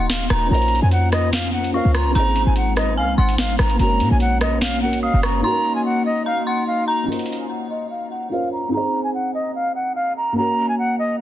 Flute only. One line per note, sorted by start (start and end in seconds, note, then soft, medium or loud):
0.10 0.27 F5 medium
0.31 0.48 A#5 medium
0.51 0.80 A#5 loud
0.82 0.90 G#5 medium
0.92 1.09 F#5 medium
1.12 1.30 D#5 medium
1.33 1.50 F5 medium
1.53 1.71 F#5 medium
1.74 1.91 F5 medium
1.95 2.12 A#5 medium
2.16 2.45 A#5 loud
2.46 2.55 G#5 medium
2.57 2.74 F#5 medium
2.77 2.94 D#5 medium
2.98 3.15 F5 medium
3.18 3.35 F#5 medium
3.38 3.56 F5 medium
3.60 3.77 A#5 medium
3.80 4.09 A#5 loud
4.11 4.19 G#5 medium
4.21 4.38 F#5 loud
4.42 4.59 D#5 medium
4.62 4.79 F5 medium
4.82 4.99 F#5 medium
5.03 5.20 F5 medium
5.24 5.41 A#5 medium
5.44 5.73 A#5 loud
5.75 5.84 G#5 medium
5.85 6.02 F#5 medium
6.06 6.23 D#5 medium
6.26 6.43 F5 loud
6.47 6.64 F#5 medium
6.67 6.85 F5 medium
6.88 7.05 A#5 medium
7.08 7.38 A#5 loud
7.40 7.48 G#5 medium
7.50 7.67 F#5 medium
7.70 7.87 D#5 medium
7.91 8.08 F5 medium
8.11 8.28 F#5 medium
8.32 8.49 F5 medium
8.52 8.70 A#5 medium
8.73 9.03 A#5 loud
9.04 9.12 G#5 medium
9.14 9.31 F#5 medium
9.34 9.52 D#5 medium
9.55 9.72 F5 medium
9.75 9.93 F#5 medium
9.96 10.13 F5 medium
10.17 10.34 A#5 medium
10.37 10.67 A#5 loud
10.69 10.77 G#5 medium
10.79 10.96 F#5 medium
10.99 11.16 D#5 medium